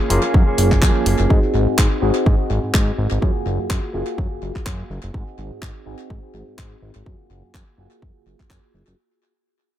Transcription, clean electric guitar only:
0.00 0.09 A#3 soft
0.00 0.10 C#4 medium
0.00 0.10 G#4 medium
0.10 0.23 F3 medium
0.10 0.24 A#3 medium
0.10 0.23 C#4 medium
0.10 0.22 G#4 medium
0.23 0.48 A#3 soft
0.23 0.47 C#4 medium
0.23 0.46 G#4 medium
0.47 0.72 A#3 medium
0.47 0.71 C#4 medium
0.47 0.70 G#4 medium
0.71 0.81 A#3 soft
0.71 0.82 C#4 medium
0.71 0.82 G#4 medium
0.82 1.05 F3 medium
0.82 1.05 A#3 medium
0.82 1.06 C#4 medium
0.82 1.06 G#4 medium
1.06 1.30 F3 medium
1.06 1.30 A#3 medium
1.06 1.31 C#4 medium
1.06 1.31 G#4 medium

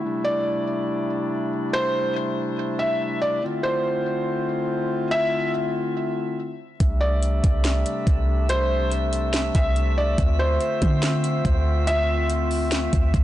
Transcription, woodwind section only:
0.00 3.38 A3 medium
0.00 3.38 E4 medium
0.04 3.39 C3 medium
0.04 3.39 G3 medium
0.04 3.39 D4 medium
3.42 6.63 D3 medium
3.42 6.63 A3 medium
3.42 6.63 C4 medium
3.42 6.63 E4 medium
3.42 6.63 F4 medium
6.80 10.15 C3 medium
6.80 10.15 G3 medium
6.80 13.24 A3 medium
6.80 10.15 D4 medium
6.80 13.24 E5 medium
10.18 13.24 D3 medium
10.18 13.24 C4 medium
10.18 13.24 F4 medium

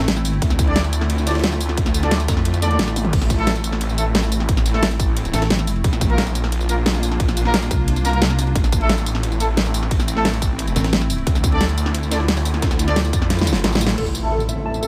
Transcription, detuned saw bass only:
0.42 1.76 D2 loud
1.78 2.27 D2 loud
2.28 2.78 F2 medium
2.79 3.12 A1 medium
3.13 4.47 A1 loud
4.49 4.98 A1 loud
5.00 5.32 A1 loud
5.84 7.19 A#1 loud
7.20 7.69 A#1 loud
8.55 9.90 A1 loud
9.91 10.41 A1 loud
10.42 10.74 A1 loud
11.27 12.61 D2 loud
12.62 13.12 D2 loud
13.13 13.63 F2 loud
13.64 13.96 A1 loud
13.98 14.87 A1 medium

